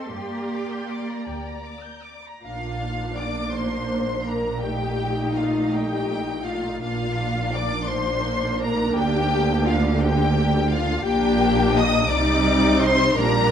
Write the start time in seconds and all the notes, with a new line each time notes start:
Already playing: A4 A5 C6
0.10 G2 A#3 G4
0.16 D5 G5
0.34 A#5
0.53 D6
0.71 G6
0.90 D6
1.09 A#5
1.27 D2 G5 A#5
1.48 A#5
1.65 D6
1.85 G6
2.04 D6
2.25 A#5
2.44 A#1 A#2 A#3 D4 F4 F5
3.16 D5 D6
3.53 C5 C6
4.25 A#4 A#5
4.61 A3 D#4 G4 G5
5.35 F4 F5
5.73 G4 G5
6.45 F4 F5
6.81 A#1 A#2 A#3 D4 F4 F5
7.54 D5 D6
7.88 C5 C6
8.61 A#4 A#5
8.95 D2 D3 G4 G5
9.66 F4 F5
10.00 G4 G5
10.69 F4 F5
11.05 A#1 A#2 A#3 D4 G4 G5
11.76 D#5 D#6
12.10 C2 C3 G3 D#4 D5 D6
12.80 C5 C6
13.16 A#1 A#2 G3 D4 A#4 A#5